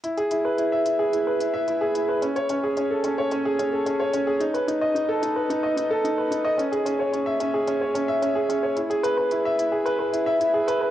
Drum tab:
HH |xxx-x-x-x-x-x-x-|xxx-x-x-x-x-x-x-|xxx-x-x-x-x-x-x-|xxx-x-x-x-x-x-x-|

HH |xxx-x-x-x-x-x-x-|